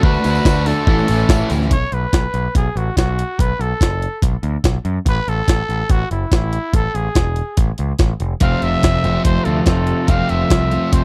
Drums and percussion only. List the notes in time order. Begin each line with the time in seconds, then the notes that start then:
0.03 kick
0.14 tambourine
0.24 open hi-hat, tambourine
0.35 tambourine
0.45 kick, snare, tambourine
0.66 open hi-hat, tambourine
0.87 kick, tambourine
0.99 tambourine
1.08 open hi-hat
1.20 tambourine
1.29 kick, snare, tambourine
1.50 open hi-hat, tambourine
1.62 snare, tambourine
1.71 kick, closed hi-hat
1.92 closed hi-hat
2.13 kick, snare, closed hi-hat
2.34 closed hi-hat
2.55 kick, closed hi-hat
2.77 closed hi-hat
2.97 kick, snare, closed hi-hat
3.19 closed hi-hat
3.39 kick, closed hi-hat
3.61 closed hi-hat
3.81 kick, snare, closed hi-hat
4.02 closed hi-hat
4.22 kick, closed hi-hat
4.43 closed hi-hat
4.64 kick, snare, closed hi-hat
4.85 closed hi-hat
5.06 kick, closed hi-hat
5.28 closed hi-hat
5.48 kick, snare, closed hi-hat
5.70 closed hi-hat
5.89 kick, closed hi-hat
6.11 closed hi-hat
6.32 kick, snare, closed hi-hat
6.53 closed hi-hat
6.74 kick, closed hi-hat
6.95 closed hi-hat
7.15 kick, snare, closed hi-hat
7.36 closed hi-hat
7.57 kick, closed hi-hat
7.78 closed hi-hat
7.99 kick, snare, closed hi-hat
8.20 closed hi-hat
8.40 kick, closed hi-hat
8.62 closed hi-hat
8.83 kick, snare, closed hi-hat
9.04 closed hi-hat
9.25 kick, closed hi-hat
9.45 closed hi-hat
9.66 kick, snare, closed hi-hat
9.87 closed hi-hat
10.08 kick, closed hi-hat
10.29 closed hi-hat
10.50 kick, snare, closed hi-hat
10.72 closed hi-hat
10.93 kick, closed hi-hat